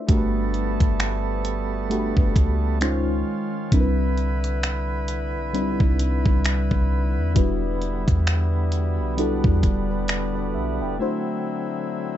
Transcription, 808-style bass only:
0.09 0.78 G1 loud
0.80 2.13 G1 medium
2.17 2.35 G1 loud
2.36 3.23 C#2 medium
3.72 5.36 C2 loud
5.35 5.78 B1 medium
5.80 6.24 C2 medium
6.26 6.69 C2 loud
6.71 7.19 C2 loud
7.17 7.35 E2 medium
7.36 8.05 E1 loud
8.08 9.00 E2 loud
8.99 9.42 B1 loud
9.44 9.63 E2 loud
9.63 10.56 E1 loud
10.54 10.82 B1 loud
10.81 10.99 E1 loud

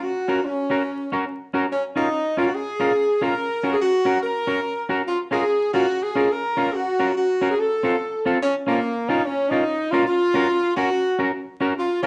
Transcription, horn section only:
0.03 0.45 F#4 medium
0.45 1.29 C#4 medium
1.72 1.83 C#4 medium
1.97 2.36 D#4 medium
2.38 2.46 F4 medium
2.47 2.55 F#4 medium
2.55 3.22 G#4 medium
3.23 3.73 A#4 medium
3.73 3.77 G#4 medium
3.82 4.20 F#4 loud
4.23 4.86 A#4 loud
5.07 5.19 F4 medium
5.33 5.72 G#4 loud
5.74 6.01 F#4 loud
6.03 6.32 G#4 medium
6.32 6.74 A#4 medium
6.74 7.16 F#4 medium
7.17 7.48 F#4 medium
7.51 7.58 G#4 medium
7.59 8.26 A4 medium
8.43 8.54 C#4 medium
8.68 9.07 A#3 medium
9.09 9.26 D#4 medium
9.25 9.51 C#4 medium
9.50 9.93 D#4 loud
9.91 10.05 F4 loud
10.06 10.72 F4 loud
10.76 11.19 F#4 loud
11.78 12.02 F4 medium
12.03 12.07 C#4 medium

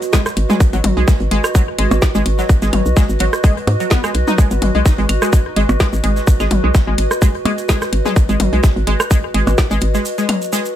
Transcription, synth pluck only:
0.13 0.21 G#3 medium
0.50 0.52 G#3 loud
0.73 0.76 F#3 medium
0.97 1.04 G#3 medium
1.31 1.35 G#3 loud
1.55 1.58 F#3 medium
1.79 1.87 G#3 medium
2.15 2.18 G#3 loud
2.39 2.41 F#3 medium
2.62 2.69 G#3 medium
2.97 3.00 G#3 loud
3.20 3.24 F#3 medium
3.44 3.52 G#3 medium
3.80 3.85 F#3 medium
3.91 3.99 B3 medium
4.04 4.11 G#3 medium
4.28 4.32 D#4 loud
4.38 4.47 G#3 medium
4.75 4.78 G#3 loud
4.98 5.03 G#3 medium
5.22 5.29 G#3 medium
5.57 5.60 G#3 loud
5.80 5.86 G#3 medium
6.04 6.12 G#3 medium
6.40 6.43 G#3 loud
6.64 6.68 G#3 medium
6.87 6.94 G#3 medium
7.22 7.25 G#3 loud
7.46 7.51 G#3 medium
7.69 7.77 G#3 medium
8.06 8.08 G#3 loud
8.29 8.34 G#3 medium
8.53 8.60 G#3 medium
8.87 8.90 G#3 loud
9.11 9.16 G#3 medium
9.34 9.43 G#3 medium
9.71 9.74 G#3 loud
9.94 9.99 G#3 medium
10.18 10.25 G#3 medium
10.53 10.56 G#3 loud

